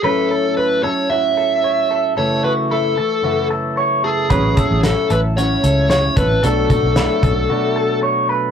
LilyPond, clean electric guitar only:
\new Staff \with { instrumentName = "Clean electric guitar" } { \time 4/4 \key a \major \tempo 4 = 113 b'8 a'4 a'8 fis'8 a'8 cis''8 a'8 | a'8 fis'8 e'8 a'8 fis'8 a'8 cis''8 a'8 | b'8 a'4 a'8 fis'8 a'8 cis''8 a'8 | a'8 fis'8 e'8 a'8 fis'8 a'8 cis''8 b'8 | }